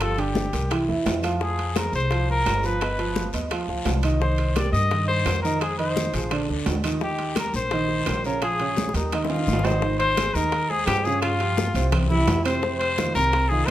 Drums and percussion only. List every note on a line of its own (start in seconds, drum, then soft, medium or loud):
0.00 high bongo medium
0.00 high conga soft
0.00 high timbale medium
0.00 long guiro medium
0.00 claves medium
0.18 high bongo soft
0.18 high conga soft
0.18 high timbale medium
0.35 high bongo medium
0.35 high conga loud
0.35 low timbale medium
0.35 short guiro medium
0.53 high conga soft
0.53 high timbale medium
0.53 short guiro medium
0.71 high bongo medium
0.71 high conga soft
0.71 high timbale medium
0.71 long guiro medium
0.71 claves medium
0.89 high bongo soft
0.89 high conga soft
1.06 high bongo soft
1.06 low bongo medium
1.06 high conga medium
1.06 high timbale medium
1.06 low timbale medium
1.06 short guiro medium
1.23 high bongo soft
1.23 high conga soft
1.23 high timbale medium
1.23 short guiro medium
1.23 claves medium
1.41 high bongo medium
1.41 high conga soft
1.41 long guiro medium
1.59 high bongo soft
1.59 high conga soft
1.59 high timbale medium
1.76 high bongo medium
1.76 high conga medium
1.76 high timbale medium
1.76 low timbale medium
1.76 short guiro medium
1.76 claves medium
1.93 high conga soft
1.93 short guiro medium
2.11 high bongo medium
2.11 high conga soft
2.11 high timbale medium
2.11 long guiro medium
2.30 high bongo soft
2.30 high conga soft
2.46 high bongo soft
2.46 low bongo medium
2.46 high conga soft
2.46 high timbale medium
2.46 low timbale medium
2.46 short guiro medium
2.46 claves medium
2.63 high bongo soft
2.63 high conga soft
2.63 short guiro medium
2.81 high bongo medium
2.81 high conga soft
2.81 high timbale medium
2.81 long guiro medium
2.81 claves medium
2.99 high bongo soft
2.99 high conga soft
2.99 high timbale medium
3.16 high bongo medium
3.16 high conga medium
3.16 low timbale medium
3.16 short guiro medium
3.33 high conga soft
3.33 high timbale medium
3.33 short guiro medium
3.51 high bongo medium
3.51 high conga soft
3.51 high timbale medium
3.51 long guiro medium
3.51 claves medium
3.69 high bongo soft
3.69 high conga soft
3.86 high bongo soft
3.86 low bongo medium
3.86 high conga medium
3.86 high timbale medium
3.86 low timbale medium
3.86 short guiro medium
4.03 high bongo soft
4.03 high conga soft
4.03 high timbale medium
4.03 short guiro medium
4.03 claves medium
4.21 high bongo medium
4.21 high conga soft
4.21 long guiro medium
4.38 high bongo soft
4.38 high conga soft
4.38 high timbale medium
4.56 high bongo medium
4.56 high conga medium
4.56 high timbale medium
4.56 low timbale medium
4.56 short guiro medium
4.56 claves medium
4.74 high conga soft
4.74 short guiro medium
4.91 high bongo medium
4.91 high conga soft
4.91 high timbale medium
4.91 long guiro medium
5.09 high bongo soft
5.09 high conga soft
5.26 high bongo soft
5.26 low bongo medium
5.26 high conga soft
5.26 high timbale medium
5.26 low timbale medium
5.26 short guiro medium
5.26 claves medium
5.45 high bongo soft
5.45 high conga soft
5.45 short guiro medium
5.61 high bongo medium
5.61 high conga soft
5.61 high timbale medium
5.61 long guiro medium
5.61 claves medium
5.79 high bongo soft
5.79 high conga soft
5.79 high timbale medium
5.97 high bongo medium
5.97 high conga medium
5.97 low timbale medium
5.97 short guiro medium
6.14 high conga soft
6.14 high timbale medium
6.14 short guiro medium
6.31 high bongo medium
6.31 high conga soft
6.31 high timbale medium
6.31 long guiro medium
6.31 claves medium
6.49 high bongo soft
6.49 high conga soft
6.66 high bongo soft
6.66 low bongo medium
6.66 high conga medium
6.66 high timbale medium
6.66 low timbale medium
6.66 short guiro medium
6.84 high bongo soft
6.84 high timbale medium
6.84 short guiro medium
6.84 claves medium
7.01 high bongo medium
7.01 high conga soft
7.01 long guiro medium
7.18 high bongo soft
7.18 high conga soft
7.18 high timbale medium
7.36 high bongo medium
7.36 high conga medium
7.36 high timbale medium
7.36 low timbale medium
7.36 short guiro medium
7.36 claves medium
7.54 high conga soft
7.54 short guiro medium
7.71 high bongo medium
7.71 high conga soft
7.71 high timbale medium
7.71 long guiro medium
7.89 high bongo soft
7.89 high conga soft
8.06 high bongo soft
8.06 low bongo medium
8.06 high conga soft
8.06 high timbale medium
8.06 low timbale medium
8.06 short guiro medium
8.06 claves medium
8.24 high bongo soft
8.24 high conga soft
8.24 short guiro medium
8.42 high bongo medium
8.42 high conga soft
8.42 high timbale medium
8.42 long guiro medium
8.42 claves medium
8.60 high bongo soft
8.60 high conga soft
8.60 high timbale medium
8.77 high bongo medium
8.77 high conga loud
8.77 low timbale medium
8.77 short guiro medium
8.89 high bongo medium
8.94 high conga soft
8.94 high timbale medium
8.94 short guiro medium
9.12 low bongo medium
9.12 high conga soft
9.12 high timbale medium
9.12 long guiro medium
9.12 claves medium
9.25 low bongo medium
9.30 high conga soft
9.30 high timbale medium
9.36 low bongo medium
9.47 low bongo medium
9.47 high conga medium
9.47 short guiro medium
9.53 low timbale medium
9.59 low bongo medium
9.65 high conga soft
9.65 low timbale medium
9.65 short guiro medium
9.65 claves medium
9.71 low bongo medium
9.82 high bongo medium
9.82 high conga soft
9.82 long guiro medium
10.00 high bongo soft
10.00 high conga soft
10.00 high timbale medium
10.17 high bongo medium
10.17 high conga loud
10.17 high timbale medium
10.17 low timbale medium
10.17 short guiro medium
10.17 claves medium
10.35 high conga soft
10.35 short guiro medium
10.52 high bongo medium
10.52 high conga soft
10.52 high timbale medium
10.52 long guiro medium
10.70 high bongo soft
10.70 high conga soft
10.87 high bongo soft
10.87 low bongo medium
10.87 high conga soft
10.87 high timbale medium
10.87 low timbale medium
10.87 short guiro medium
10.87 claves medium
11.05 high bongo soft
11.05 high conga soft
11.05 short guiro medium
11.22 high bongo medium
11.22 high conga soft
11.22 high timbale medium
11.22 long guiro medium
11.22 claves medium
11.40 high bongo soft
11.40 high conga soft
11.40 high timbale medium
11.57 high bongo medium
11.57 high conga medium
11.57 low timbale medium
11.57 short guiro medium
11.75 high conga soft
11.75 high timbale medium
11.75 short guiro medium
11.92 high bongo medium
11.92 high conga soft
11.92 low conga medium
11.92 high timbale loud
11.92 long guiro medium
11.92 claves medium
12.10 high bongo soft
12.10 high conga soft
12.10 low conga medium
12.27 high bongo soft
12.27 low bongo medium
12.27 high conga medium
12.27 high timbale medium
12.27 low timbale medium
12.27 short guiro medium
12.45 high bongo soft
12.45 high conga soft
12.45 high timbale medium
12.45 short guiro medium
12.45 claves medium
12.62 high bongo medium
12.62 high conga soft
12.62 long guiro medium
12.81 high bongo soft
12.81 high conga soft
12.81 high timbale medium
12.98 high bongo medium
12.98 high conga loud
12.98 high timbale medium
12.98 low timbale medium
12.98 short guiro medium
12.98 claves medium
13.15 high conga soft
13.15 short guiro medium
13.33 high bongo medium
13.33 high conga soft
13.33 high timbale medium
13.33 long guiro medium
13.51 high bongo soft
13.51 high conga soft